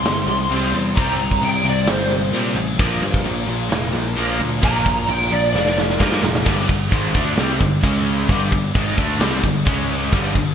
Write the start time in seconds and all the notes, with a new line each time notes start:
Already playing: C3 G3 C4 C6
0.04 G1 C3 G3, snare, crash
0.27 C2 C3 G3, crash
0.49 C2 C3 G3 C4, crash
0.72 E2 C3 G3 C4, crash
0.95 C2 C3 G3 C4 A#5, kick, crash
1.19 C3 G3, crash
1.31 kick
1.42 C2 C3 G3 G5, crash
1.64 C2 C3 G3 C4, crash
1.69 D5
1.86 G1 C3 G3 C5, snare, crash
2.11 C3 G3, crash
2.33 A#2 C3 G3 C4, crash
2.55 A1 C3 G3, crash
2.79 A#1 A#2 F3 A#3, kick, crash
3.01 G2 A#2 F3, crash
3.14 kick
3.24 A#1 A#2 F3, crash
3.47 A#1 A#2 F3, crash
3.69 F1 A#2 F3, snare, crash
3.73 A#3
3.92 A#1 A#2 F3, crash
4.16 A#1 A#2 F3 A#3, crash
4.39 D2 A#2 F3, crash
4.62 A#1 A#2 F3 A#3 A#5, kick, crash
4.84 A#2 F3, kick, crash
5.07 A#1 A#2 F3 G5, crash
5.21 snare
5.30 A#1 A#2 F3 D5, crash
5.53 F1 A#2 F3 A#3 D5, snare
5.66 snare
5.76 A#2 F3, snare
5.90 snare
5.98 G2 A#2 F3 A#3, kick, snare
6.12 snare
6.22 F1 A#2 F3, snare
6.35 snare
6.44 G1 G2 D3 G3, kick, crash
6.68 G1 G2 D3, kick, crash
6.91 G#1 G#2 D#3 G#3, kick, crash
7.04 snare
7.14 D2 D3 A3 D4, kick, crash
7.37 C2 C3 G3 C4, snare, crash
7.60 G1 G2 D3, kick, crash
7.83 C#2 C#3 G#3 C#4, kick, crash
8.07 crash
8.29 G1 G2 D3 G3, kick, crash
8.51 G1 G2 D3, kick, crash
8.75 G#1 G#2 D#3 G#3, kick, crash
8.88 snare
8.97 D2 D3 A3 D4, kick, crash
9.20 C2 C3 G3 C4, snare, crash
9.43 G1 G2 D3, kick, crash
9.65 C#2 C#3 G#3 C#4, kick, crash
9.90 crash
10.12 G1 G2 D3 G3, kick, crash
10.35 G1 G2 D3, kick, crash